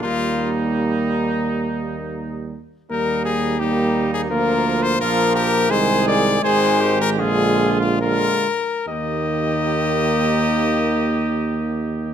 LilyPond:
<<
  \new Staff \with { instrumentName = "Trumpet" } { \time 4/4 \key ees \major \tempo 4 = 82 f'8. r16 ees'2~ ees'8 r8 | bes'8 aes'8 g'8. aes'16 bes'8. c''16 bes'8 bes'8 | c''8 d''8 c''8. bes'16 aes'8. f'16 bes'4 | ees''1 | }
  \new Staff \with { instrumentName = "Trumpet" } { \time 4/4 \key ees \major ees'2.~ ees'8 r8 | ees'4 ees'4 f'4 f'8 g'8 | aes'4 aes'8 g'8 f'4 f'8 r8 | g'1 | }
  \new Staff \with { instrumentName = "French horn" } { \time 4/4 \key ees \major bes2.~ bes8 r8 | bes4 bes4 bes4 bes4 | aes4 aes4 aes4 aes8 r8 | bes1 | }
  \new Staff \with { instrumentName = "Trombone" } { \clef bass \time 4/4 \key ees \major g2.~ g8 r8 | g4 g4 f4 f4 | ees4 ees4 d4 d8 r8 | ees1 | }
  \new Staff \with { instrumentName = "Tuba" } { \clef bass \time 4/4 \key ees \major ees,2.~ ees,8 r8 | ees,2 d,4 bes,,4 | c,4 aes,,4 bes,,4. r8 | ees,1 | }
>>